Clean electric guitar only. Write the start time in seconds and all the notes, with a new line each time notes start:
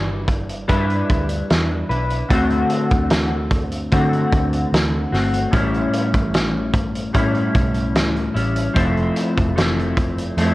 Already playing: G3 D4 E4 B4
0.68 G3 D4 E4 B4
1.89 D4 E4 B4
2.29 D3 A3 C4
2.33 F#4
3.92 D3 A3 C4 F#4
5.12 A3 C4 F#4
5.51 A2 G3 C#4 E4
7.13 A2 G3 C#4 E4
8.34 G3 C#4 E4
8.74 F3 A3 C4 E4
9.55 F3 A3 C4 E4
10.38 F3 A3 C4 E4